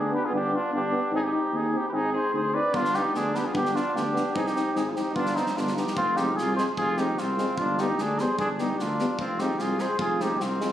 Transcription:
Already playing: tuba D2, trumpet D4, cornet G#4
0.10 euphonium B3, french horn D4
0.14 trumpet G4, cornet B4
0.25 trumpet F4, cornet G#4
0.29 tuba G1, euphonium B3, french horn D4
0.35 trumpet D4, cornet G4
0.49 euphonium B3, french horn D4
0.54 trumpet D4, cornet F4
0.71 tuba G1, euphonium B3, french horn D4, trumpet D4
0.77 cornet G4
0.91 euphonium B3, french horn D4
1.11 tuba G#1, euphonium C4, french horn D#4, trumpet D#4
1.16 cornet G#4
1.23 trumpet D#4, cornet G4
1.31 euphonium C4, french horn D#4
1.52 tuba D#2, euphonium C4, french horn D#4, trumpet D#4, cornet G#4
1.71 euphonium C4, trumpet D#4, french horn D#4
1.77 cornet G4
1.89 tuba G#1, euphonium C4, trumpet G4, cornet B4
1.93 french horn D#4, trumpet D#4, cornet G#4
2.12 euphonium C4, french horn D#4, trumpet G#4, cornet C5
2.32 tuba D2, euphonium C4, french horn D#4, trumpet G#4
2.36 cornet C5
2.52 euphonium C4, french horn D#4, trumpet B4, cornet D5
2.73 tuba G1, euphonium B3, french horn D4, trumpet D4, cornet F4, kick
2.85 snare
2.94 euphonium B3, french horn D4, trumpet D#4, cornet G4, snare
3.12 tuba D2, euphonium B3, french horn D4, trumpet D4, cornet G#4, snare
3.32 euphonium B3, french horn D4, cornet B4, snare
3.37 trumpet G4
3.45 trumpet F4, cornet G#4
3.53 tuba G1, euphonium B3, french horn D4, trumpet D4, cornet G4, kick
3.66 snare
3.72 euphonium B3, french horn D4, trumpet D4, cornet F4, snare
3.93 tuba D2, euphonium B3, french horn D4, trumpet D4, cornet G4, snare
4.14 euphonium B3, french horn D4, snare
4.34 tuba C2, euphonium C4, trumpet D#4, french horn D#4, cornet G#4, kick
4.45 trumpet D#4, cornet G4, snare
4.54 euphonium C4, french horn D#4, snare
4.74 tuba G#1, euphonium C4, trumpet D#4, french horn D#4, cornet G#4, snare
4.89 trumpet F4, cornet G#4
4.93 euphonium C4, french horn D#4, trumpet D#4, cornet G4, snare
5.14 tuba G1, euphonium B3, french horn D4, trumpet D4, cornet F4, kick
5.26 snare
5.34 euphonium B3, trumpet C4, french horn D4, cornet D#4, snare
5.46 snare
5.55 tuba G1, euphonium B3, french horn D4, trumpet D4, cornet F4, snare
5.67 snare
5.74 euphonium B3, french horn D4, trumpet D#4, cornet G4, snare
5.87 snare
5.95 tuba F1, trumpet C4, cornet F4, kick
6.15 euphonium G#3, french horn C4, trumpet D#4, cornet G4, snare
6.36 tuba C2, trumpet F4, cornet G#4, snare
6.56 euphonium G#3, french horn C4, trumpet G#4, cornet C5, snare
6.77 tuba F1, trumpet F4, cornet G#4, kick
6.97 euphonium G#3, french horn C4, trumpet D#4, cornet G4, snare
7.18 tuba C2, trumpet C4, cornet F4, snare
7.37 euphonium G#3, french horn C4, snare
7.58 tuba G1, trumpet D4, cornet F4, kick
7.78 euphonium G3, french horn B3, trumpet D#4, cornet G4, snare
7.98 tuba D2, trumpet D4, cornet G#4, snare
8.18 euphonium G3, french horn B3, trumpet G#4, cornet C5, snare
8.38 tuba G1, trumpet D4, cornet G#4, kick
8.58 euphonium G3, french horn B3, trumpet D#4, cornet G4, snare
8.78 tuba D2, trumpet D4, cornet F4, snare
8.99 euphonium G3, french horn B3, snare
9.19 tuba F1, trumpet C4, cornet F4, kick
9.39 euphonium G#3, french horn C4, trumpet D#4, cornet G4, snare
9.58 tuba C2, trumpet F4, cornet G#4, snare
9.79 euphonium G#3, french horn C4, trumpet G#4, cornet C5, snare
9.99 tuba F1, trumpet F4, cornet G#4, kick
10.20 euphonium G#3, french horn C4, trumpet D#4, cornet G4, snare
10.39 tuba C2, trumpet C4, cornet F4, snare
10.59 euphonium G#3, french horn C4, snare

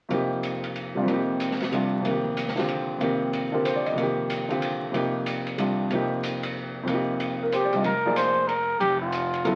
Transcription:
0.09 grand piano F2 C3 A#3 D#4, ride
0.14 grand piano G4
0.43 hi-hat pedal, ride
0.64 ride
0.76 ride
0.95 grand piano C3 G3 D4 F4
1.02 grand piano F2 C3
1.07 grand piano A#3 D#4, ride
1.14 grand piano G4
1.40 hi-hat pedal, ride
1.51 snare
1.60 snare, ride
1.72 grand piano C3 G3 D4 F4, ride
2.00 grand piano F2 C3
2.05 grand piano D#3 A#3, ride
2.11 grand piano G4
2.25 kick
2.37 hi-hat pedal, ride
2.48 snare
2.56 grand piano D3 C4 F4 G4, snare, ride
2.69 ride
2.98 grand piano F2 C3 A#3, ride
3.02 grand piano D#3 G4
3.33 ride
3.52 grand piano D3 C4 F4 G4 A#4
3.65 grand piano C5, hi-hat pedal, ride
3.76 grand piano D5
3.86 grand piano D#5, ride
3.92 grand piano F2 C3
3.98 grand piano D#3 A#3, ride
4.03 grand piano G4
4.30 hi-hat pedal, ride
4.48 grand piano D3 C4 F4 G4, ride
4.62 ride
4.92 grand piano F2 C3 A#3 D#4, ride
4.97 grand piano G4
5.26 hi-hat pedal, ride
5.47 ride
5.58 grand piano C3 G3 D4 F4, ride
5.90 grand piano F2 C3 A#3 D#4, ride
5.95 grand piano G4
6.23 hi-hat pedal, ride
6.43 ride
6.83 grand piano F2 C3
6.87 grand piano A#3 D#4, ride
6.94 grand piano G4
7.20 ride
7.43 grand piano A#4
7.52 trumpet G4, grand piano C5, hi-hat pedal, ride
7.65 grand piano D5
7.73 grand piano C3 G3 D4 F4, ride
7.77 grand piano D#5
7.84 upright bass F1, trumpet A#4, ride
8.06 grand piano F3 A#3 D#4 G#4 D5
8.16 trumpet C5, hi-hat pedal, ride
8.47 trumpet A#4, ride
8.80 upright bass F1, trumpet G4, ride
9.00 trumpet F4
9.12 hi-hat pedal, ride
9.33 ride
9.45 grand piano C#3 F#3 B3 E4 A4, ride

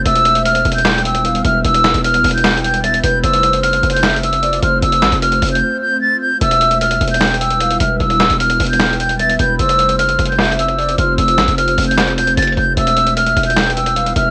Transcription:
0.06 808-style bass E1, ambient pad G3 B3 E4 B4, soft synth lead E5, flute E6, closed hi-hat
0.16 closed hi-hat
0.25 closed hi-hat
0.35 closed hi-hat
0.45 flute F6, closed hi-hat
0.55 closed hi-hat
0.65 808-style bass E1, closed hi-hat
0.72 flute G6, closed hi-hat
0.79 closed hi-hat
0.85 soft synth lead G5, snare, clap, closed hi-hat
0.92 closed hi-hat
0.98 closed hi-hat
1.05 flute E6, closed hi-hat
1.15 closed hi-hat
1.25 soft synth lead F5, closed hi-hat
1.35 closed hi-hat
1.45 808-style bass E1, soft synth lead E5, flute F6, closed hi-hat
1.64 808-style bass E1, flute E6, closed hi-hat
1.74 closed hi-hat
1.84 snare, clap, closed hi-hat
1.94 808-style bass E1, closed hi-hat
2.04 flute F6, closed hi-hat
2.14 closed hi-hat
2.24 808-style bass E1, closed hi-hat, open hi-hat
2.31 flute G6, closed hi-hat
2.37 closed hi-hat
2.44 soft synth lead G5, snare, clap, closed hi-hat
2.51 closed hi-hat
2.57 closed hi-hat
2.64 flute G6, closed hi-hat
2.74 closed hi-hat
2.84 soft synth lead E5, flute A6, closed hi-hat
2.94 closed hi-hat
3.03 808-style bass E1, soft synth lead B4, flute G6, closed hi-hat
3.23 808-style bass F1, ambient pad A3 C4 F4 C5, soft synth lead C5, flute E6, closed hi-hat
3.33 closed hi-hat
3.43 closed hi-hat
3.53 closed hi-hat
3.63 flute F6, closed hi-hat
3.73 closed hi-hat
3.83 808-style bass F1, closed hi-hat
3.90 flute G6, closed hi-hat
3.96 closed hi-hat
4.03 soft synth lead E5, snare, clap, closed hi-hat
4.10 closed hi-hat
4.16 closed hi-hat
4.23 flute E6, closed hi-hat
4.33 closed hi-hat
4.42 soft synth lead D5, closed hi-hat
4.53 closed hi-hat
4.62 808-style bass F1, soft synth lead C5, flute F6, closed hi-hat
4.82 808-style bass F1, flute E6, closed hi-hat
4.92 closed hi-hat
5.02 808-style bass A1, snare, clap, closed hi-hat
5.12 808-style bass F1, closed hi-hat
5.22 flute F6, closed hi-hat
5.32 closed hi-hat
5.42 808-style bass F1, closed hi-hat, open hi-hat
5.49 flute G6, closed hi-hat
5.55 closed hi-hat
5.81 flute G6
6.01 flute A6
6.21 flute G6
6.41 808-style bass E1, ambient pad G3 B3 E4 B4, soft synth lead E5, flute E6, closed hi-hat
6.51 closed hi-hat
6.61 closed hi-hat
6.71 closed hi-hat
6.81 flute F6, closed hi-hat
6.91 closed hi-hat
7.01 808-style bass E1, closed hi-hat
7.08 flute G6, closed hi-hat
7.14 closed hi-hat
7.21 soft synth lead G5, snare, clap, closed hi-hat
7.27 closed hi-hat
7.34 closed hi-hat
7.41 flute E6, closed hi-hat
7.51 closed hi-hat
7.61 soft synth lead F5, closed hi-hat
7.71 closed hi-hat
7.80 808-style bass E1, soft synth lead E5, flute F6, closed hi-hat
8.00 808-style bass E1, flute E6, closed hi-hat
8.10 closed hi-hat
8.20 snare, clap, closed hi-hat
8.30 808-style bass E1, closed hi-hat
8.40 flute F6, closed hi-hat
8.50 closed hi-hat
8.60 808-style bass E1, closed hi-hat, open hi-hat
8.67 flute G6, closed hi-hat
8.73 closed hi-hat
8.80 soft synth lead G5, snare, clap, closed hi-hat
8.86 closed hi-hat
8.93 closed hi-hat
9.00 flute G6, closed hi-hat
9.09 closed hi-hat
9.19 soft synth lead E5, flute A6, closed hi-hat
9.30 closed hi-hat
9.39 808-style bass E1, soft synth lead B4, flute G6, closed hi-hat
9.59 808-style bass F1, ambient pad A3 C4 F4 C5, soft synth lead C5, flute E6, closed hi-hat
9.69 closed hi-hat
9.79 closed hi-hat
9.89 closed hi-hat
9.99 flute F6, closed hi-hat
10.09 closed hi-hat
10.19 808-style bass F1, closed hi-hat
10.25 flute G6, closed hi-hat
10.32 closed hi-hat
10.39 soft synth lead E5, snare, clap, closed hi-hat
10.45 closed hi-hat
10.52 closed hi-hat
10.59 flute E6, closed hi-hat
10.68 closed hi-hat
10.78 soft synth lead D5, closed hi-hat
10.89 closed hi-hat
10.98 808-style bass F1, soft synth lead C5, flute F6, closed hi-hat
11.18 808-style bass F1, flute E6, closed hi-hat
11.28 closed hi-hat
11.38 808-style bass A1, snare, clap, closed hi-hat
11.48 808-style bass F1, closed hi-hat
11.58 flute F6, closed hi-hat
11.68 closed hi-hat
11.78 808-style bass F1, closed hi-hat, open hi-hat
11.84 flute G6, closed hi-hat
11.91 closed hi-hat
11.98 snare, clap, closed hi-hat
12.08 closed hi-hat
12.17 808-style bass E1, flute G6, closed hi-hat
12.27 808-style bass F1, closed hi-hat
12.37 808-style bass F1, flute A6, closed hi-hat
12.42 closed hi-hat
12.47 closed hi-hat
12.52 closed hi-hat
12.57 808-style bass F1, flute G6, closed hi-hat
12.77 808-style bass E1, ambient pad G3 B3 E4 B4, soft synth lead E5, flute E6, closed hi-hat
12.87 closed hi-hat
12.97 closed hi-hat
13.07 closed hi-hat
13.17 flute F6, closed hi-hat
13.27 closed hi-hat
13.37 808-style bass E1, closed hi-hat
13.43 flute G6, closed hi-hat
13.50 closed hi-hat
13.57 soft synth lead G5, snare, clap, closed hi-hat
13.63 closed hi-hat
13.70 closed hi-hat
13.76 flute E6, closed hi-hat
13.86 closed hi-hat
13.96 soft synth lead F5, closed hi-hat
14.06 closed hi-hat
14.16 808-style bass E1, soft synth lead E5, flute F6, closed hi-hat

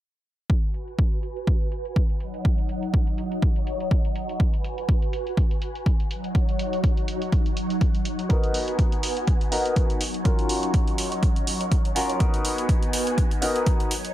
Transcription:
0.50 string machine F#4 B4 G#5, kick
0.63 closed hi-hat
0.74 closed hi-hat
0.88 closed hi-hat
0.99 kick
1.12 closed hi-hat
1.23 closed hi-hat
1.36 closed hi-hat
1.47 kick
1.61 closed hi-hat
1.72 closed hi-hat
1.85 closed hi-hat
1.96 kick, closed hi-hat
2.10 closed hi-hat
2.20 string machine F#3 D#4 C#5 F#5, closed hi-hat
2.34 closed hi-hat
2.45 kick, closed hi-hat
2.58 closed hi-hat
2.69 closed hi-hat
2.83 closed hi-hat
2.94 kick, closed hi-hat
3.07 closed hi-hat
3.18 closed hi-hat
3.32 closed hi-hat
3.42 kick, closed hi-hat
3.56 closed hi-hat
3.67 closed hi-hat
3.80 closed hi-hat
3.91 kick, closed hi-hat
4.05 closed hi-hat
4.16 closed hi-hat
4.29 closed hi-hat
4.40 string machine F#4 B4 G#5, kick, closed hi-hat
4.54 closed hi-hat
4.64 closed hi-hat
4.78 closed hi-hat
4.89 kick, closed hi-hat
5.02 closed hi-hat
5.13 closed hi-hat
5.27 closed hi-hat
5.37 kick, closed hi-hat
5.51 closed hi-hat
5.62 closed hi-hat
5.75 closed hi-hat
5.86 kick, closed hi-hat
6.00 closed hi-hat
6.11 string machine F#3 D#4 C#5 F#5, closed hi-hat
6.24 closed hi-hat
6.35 kick, closed hi-hat
6.49 closed hi-hat
6.59 closed hi-hat
6.73 closed hi-hat
6.84 kick, closed hi-hat
6.97 closed hi-hat
7.08 closed hi-hat
7.22 closed hi-hat
7.32 kick, closed hi-hat
7.46 closed hi-hat
7.57 closed hi-hat
7.70 closed hi-hat
7.81 kick, closed hi-hat
7.95 closed hi-hat
8.05 closed hi-hat
8.19 closed hi-hat
8.29 grand piano B3 D#4 F#4 A#4, string machine B3 F#4 G#5, kick, closed hi-hat
8.44 closed hi-hat
8.54 open hi-hat
8.68 closed hi-hat
8.79 kick, closed hi-hat
8.92 closed hi-hat
9.03 open hi-hat
9.17 closed hi-hat
9.27 kick, closed hi-hat
9.41 closed hi-hat
9.52 grand piano B3 D#4 F#4 A#4, open hi-hat
9.66 closed hi-hat
9.76 kick, closed hi-hat
9.90 closed hi-hat
10.00 string machine F#3 D#4 C#5, open hi-hat
10.14 closed hi-hat
10.24 grand piano C#4 F4 F#4 A#4, kick, closed hi-hat
10.39 closed hi-hat
10.49 open hi-hat
10.63 closed hi-hat
10.74 kick, closed hi-hat
10.88 closed hi-hat
10.98 open hi-hat
11.12 closed hi-hat
11.23 kick, closed hi-hat
11.36 closed hi-hat
11.47 open hi-hat
11.61 closed hi-hat
11.72 kick, closed hi-hat
11.85 closed hi-hat
11.95 grand piano C#4 F4 F#4 A#4, open hi-hat
12.10 closed hi-hat
12.19 grand piano B3 D#4 F#4 A#4, string machine B3 F#4 G#5, kick, closed hi-hat
12.34 closed hi-hat
12.45 open hi-hat
12.58 closed hi-hat
12.69 kick, closed hi-hat
12.83 closed hi-hat
12.93 open hi-hat
13.07 closed hi-hat
13.18 kick, closed hi-hat
13.31 closed hi-hat
13.42 grand piano B3 D#4 F#4 A#4, open hi-hat
13.56 closed hi-hat
13.66 kick, closed hi-hat
13.80 closed hi-hat
13.91 string machine F#3 D#4 C#5, open hi-hat
14.05 closed hi-hat

